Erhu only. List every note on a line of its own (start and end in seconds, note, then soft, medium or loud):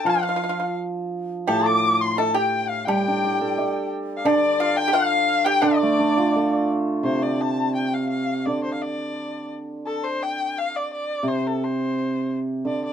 0.00 0.10 A5 loud
0.09 0.78 F5 medium
1.48 1.67 A5 medium
1.66 2.03 D6 loud
2.01 2.20 C6 medium
2.18 2.36 A5 medium
2.34 2.70 G5 medium
2.69 2.87 F5 medium
2.86 3.91 G5 medium
4.17 4.28 F5 medium
4.27 4.62 D5 loud
4.60 4.78 F5 loud
4.76 4.94 G5 loud
4.93 5.46 F5 loud
5.45 5.63 G5 loud
5.61 6.68 D5 medium
7.04 7.24 C5 medium
7.23 7.42 D5 medium
7.41 7.75 A5 medium
7.75 7.95 G5 medium
7.94 8.09 F5 medium
8.09 8.47 F5 medium
8.46 8.63 D5 medium
8.64 8.73 C5 medium
8.74 8.83 F5 medium
8.82 9.51 D5 medium
9.87 10.06 A4 medium
10.04 10.24 C5 medium
10.23 10.60 G5 medium
10.58 10.78 F5 medium
10.76 10.92 D5 medium
10.93 11.30 D5 medium
11.28 11.49 C5 medium
11.47 11.66 A4 medium
11.64 12.34 C5 medium
12.67 12.84 D5 medium
12.85 12.93 D5 medium